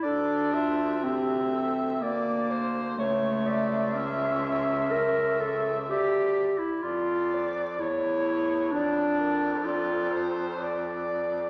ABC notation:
X:1
M:3/4
L:1/16
Q:1/4=62
K:Dm
V:1 name="Alto saxophone"
d2 e2 e4 d2 c2 | ^c2 d2 e4 e4 | d2 z2 d4 ^c4 | d4 d2 c2 d4 |]
V:2 name="Clarinet"
A2 F2 G2 A2 B2 c2 | ^c2 e8- e2 | e2 z2 d2 c2 ^c2 c2 | d2 B2 A2 c2 d4 |]
V:3 name="Clarinet"
D4 C4 B,4 | A,4 ^C4 B2 A2 | G3 E F3 z E4 | D4 F4 z4 |]
V:4 name="Baritone saxophone" clef=bass
D,,8 D,,4 | ^C,,12 | D,,2 z2 F,,4 E,,4 | F,,12 |]